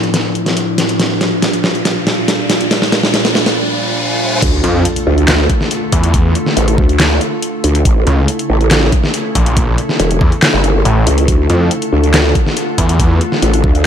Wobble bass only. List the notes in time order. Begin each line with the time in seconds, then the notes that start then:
4.42 D2
5.07 D2
6.57 A1
6.78 D2
7.64 D2
7.85 A1
8.50 A1
10.00 E1
10.54 G1
11.07 C#2
11.28 D2
11.92 D2
13.42 A1
13.64 D2